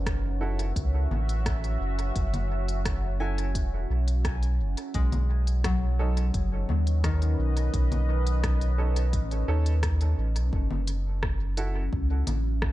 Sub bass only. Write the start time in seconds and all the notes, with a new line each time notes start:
Already playing: F#1
0.76 C#2
1.11 A1
1.80 F#1
2.16 F#1
3.55 E1
3.90 B1
4.60 F#1
4.94 B1
6.34 F#1
6.69 D#2
7.39 B1
7.74 B1
9.13 A1
9.48 D#2
10.18 A1
10.36 B1
10.53 F#1
11.93 C#2
12.27 A1